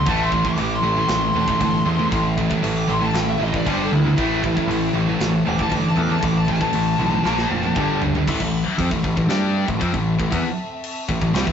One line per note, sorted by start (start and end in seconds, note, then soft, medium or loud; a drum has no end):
0.06 0.46 A1 medium
0.06 0.31 A2 medium
0.06 0.31 E3 loud
0.06 0.32 A3 loud
0.06 3.63 C4 medium
0.06 3.63 A4 medium
0.06 3.63 E5 medium
0.06 0.20 A5 medium
0.06 kick loud
0.06 crash medium
0.23 0.46 C6 loud
0.32 0.45 A2 medium
0.32 0.44 E3 medium
0.32 kick medium
0.45 0.58 A2 medium
0.45 0.58 E3 medium
0.45 0.71 D6 loud
0.45 kick medium
0.57 0.77 A1 medium
0.57 0.81 A2 medium
0.57 0.82 E3 medium
0.57 crash medium
0.75 1.35 C6 loud
0.82 1.03 A1 medium
0.82 0.96 A2 medium
0.82 0.97 E3 medium
0.97 1.08 A2 medium
0.97 1.09 E3 medium
1.08 1.29 A1 medium
1.08 1.33 A2 medium
1.08 1.33 E3 medium
1.08 snare loud
1.08 crash medium
1.34 1.54 E1 medium
1.34 1.48 A2 medium
1.34 1.48 E3 medium
1.34 1.58 A3 medium
1.39 2.37 C6 loud
1.48 1.60 A2 medium
1.48 1.60 E3 medium
1.48 kick medium
1.61 1.81 G1 medium
1.61 1.84 A2 medium
1.61 1.84 E3 medium
1.61 2.11 A3 loud
1.61 kick loud
1.61 crash medium
1.85 2.06 E2 medium
1.85 1.99 A2 medium
1.85 1.98 E3 medium
1.99 2.10 A2 medium
1.99 2.10 E3 medium
2.11 2.52 A1 medium
2.11 2.35 A2 medium
2.11 2.35 E3 medium
2.11 3.38 A3 medium
2.11 kick loud
2.11 crash medium
2.37 2.49 A2 medium
2.37 2.49 E3 medium
2.37 kick medium
2.50 2.62 A2 medium
2.50 2.62 E3 medium
2.50 kick medium
2.63 2.83 A1 medium
2.63 2.86 A2 medium
2.63 2.86 E3 medium
2.63 crash medium
2.77 2.89 D6 medium
2.88 3.09 A1 medium
2.88 3.00 A2 medium
2.88 3.00 E3 medium
2.88 3.02 C6 medium
3.01 3.13 A2 medium
3.01 3.14 E3 medium
3.01 3.17 A5 loud
3.14 3.34 A1 medium
3.14 3.38 A2 medium
3.14 3.38 E3 medium
3.14 3.29 G5 loud
3.14 snare loud
3.14 crash medium
3.29 3.41 E5 loud
3.39 3.60 A1 medium
3.39 3.53 A2 medium
3.39 3.53 E3 medium
3.39 3.64 A3 medium
3.44 3.55 D#5 medium
3.54 3.67 A2 medium
3.54 3.67 E3 medium
3.54 3.67 D5 loud
3.54 kick medium
3.64 3.86 G1 medium
3.64 3.91 G2 medium
3.64 3.91 D3 medium
3.64 4.16 G3 medium
3.64 4.16 D4 medium
3.64 4.16 D5 medium
3.64 kick medium
3.64 crash medium
3.68 3.91 G3 loud
3.68 3.84 C5 loud
3.84 3.94 A4 loud
3.92 4.12 D2 medium
3.92 4.05 G2 medium
3.92 4.05 D3 medium
3.92 4.93 E4 loud
4.06 4.18 G2 medium
4.06 4.18 D3 medium
4.17 4.58 A1 medium
4.17 4.42 A2 loud
4.17 4.42 E3 loud
4.17 7.22 A3 medium
4.17 4.43 A3 loud
4.17 7.22 E4 medium
4.17 7.22 C5 medium
4.17 kick loud
4.17 crash medium
4.44 4.57 A2 medium
4.44 4.57 E3 medium
4.44 kick medium
4.57 4.68 A2 medium
4.57 4.69 E3 medium
4.57 kick medium
4.67 4.88 A1 loud
4.67 4.92 A2 medium
4.67 4.92 E3 medium
4.67 crash medium
4.94 5.14 A1 medium
4.94 5.08 A2 medium
4.94 5.07 E3 medium
5.09 5.21 A2 medium
5.09 5.21 E3 medium
5.20 5.40 A1 loud
5.20 5.44 A2 medium
5.20 5.44 E3 medium
5.20 snare loud
5.20 crash medium
5.45 5.67 E1 medium
5.45 5.59 A2 medium
5.45 5.59 E3 medium
5.45 5.69 A3 medium
5.45 5.59 D6 loud
5.59 5.70 A2 medium
5.59 5.71 E3 medium
5.59 5.73 A5 loud
5.59 kick loud
5.71 5.91 G1 medium
5.71 5.94 A2 medium
5.71 5.95 E3 medium
5.71 6.22 A3 medium
5.71 5.85 D6 loud
5.71 kick medium
5.71 crash medium
5.89 5.99 A5 loud
5.97 6.17 E2 medium
5.97 6.10 A2 medium
5.97 6.10 E3 medium
5.97 6.11 D6 loud
6.11 6.23 A2 medium
6.11 6.23 E3 medium
6.11 6.23 A5 loud
6.22 6.63 A1 loud
6.22 6.46 A2 medium
6.22 6.46 E3 loud
6.22 7.24 A3 medium
6.22 6.36 D6 loud
6.22 kick loud
6.22 crash medium
6.38 6.49 A5 loud
6.48 6.60 A2 medium
6.48 6.59 E3 medium
6.48 7.99 A5 loud
6.48 kick loud
6.61 6.73 A2 medium
6.61 6.73 E3 medium
6.61 kick medium
6.73 6.94 A1 medium
6.73 6.97 A2 medium
6.73 6.97 E3 medium
6.73 crash medium
6.98 7.19 B1 medium
6.98 7.12 A2 medium
6.98 7.11 E3 medium
7.12 7.25 A2 medium
7.12 7.25 E3 medium
7.25 7.45 A#1 medium
7.25 7.50 A#2 loud
7.25 7.50 F3 loud
7.25 7.76 A#3 medium
7.25 7.50 A#3 loud
7.25 7.76 F4 medium
7.25 7.76 F5 medium
7.25 snare medium
7.38 snare medium
7.50 7.70 F1 medium
7.50 7.64 A#2 medium
7.50 7.64 F3 medium
7.63 7.77 A#2 medium
7.63 7.77 F3 medium
7.63 high tom medium
7.74 7.96 G1 loud
7.74 8.01 G2 medium
7.74 8.26 D4 medium
7.74 8.26 G4 medium
7.74 8.26 G5 medium
7.74 kick loud
7.74 mid tom medium
7.79 8.01 D3 medium
7.79 8.02 G3 loud
8.01 8.21 G1 medium
8.01 8.15 G2 medium
8.01 8.15 D3 medium
8.01 floor tom loud
8.15 8.28 G2 medium
8.15 8.27 D3 medium
8.15 floor tom medium
8.27 8.40 A1 loud
8.27 8.39 A2 loud
8.27 8.40 E3 loud
8.27 11.52 C4 medium
8.27 11.52 A4 medium
8.27 11.52 E5 medium
8.27 kick loud
8.27 crash loud
8.27 crash medium
8.40 8.64 A1 medium
8.40 8.61 A2 medium
8.40 8.62 E3 medium
8.40 kick medium
8.78 8.90 F2 medium
8.78 8.91 F3 loud
8.78 8.91 C4 medium
8.78 kick loud
8.78 crash medium
8.91 9.03 A1 medium
8.91 9.02 A2 medium
8.91 9.03 E3 medium
8.91 kick medium
9.04 9.16 A1 medium
9.04 9.15 A2 medium
9.04 9.16 E3 medium
9.04 kick medium
9.16 9.27 A1 medium
9.16 9.29 A2 medium
9.16 9.29 E3 medium
9.16 kick medium
9.27 9.64 G2 medium
9.27 9.66 G3 medium
9.27 9.67 D4 loud
9.27 9.67 G4 loud
9.27 snare loud
9.27 crash medium
9.66 9.80 A1 medium
9.66 9.79 A2 medium
9.66 9.80 E3 medium
9.66 kick loud
9.80 9.93 F2 loud
9.80 9.92 F3 loud
9.80 9.92 C4 loud
9.80 kick loud
9.80 crash medium
9.93 10.17 A1 medium
9.93 10.14 A2 medium
9.93 10.14 E3 medium
9.93 kick medium
10.19 10.31 A1 medium
10.19 10.30 A2 medium
10.19 10.29 E3 medium
10.19 kick medium
10.31 10.44 E2 loud
10.31 10.43 E3 medium
10.31 10.44 B3 loud
10.31 kick loud
10.31 crash medium
10.84 crash medium
11.09 11.21 A1 medium
11.09 11.20 A2 medium
11.09 11.22 E3 medium
11.09 kick medium
11.21 11.33 A1 medium
11.21 11.34 A2 medium
11.21 11.35 E3 medium
11.21 kick medium
11.34 11.46 C2 loud
11.34 11.46 C3 medium
11.34 11.47 G3 loud
11.34 snare loud
11.34 crash medium
11.47 11.52 A1 medium
11.47 11.52 A2 medium
11.47 11.52 E3 medium
11.47 kick loud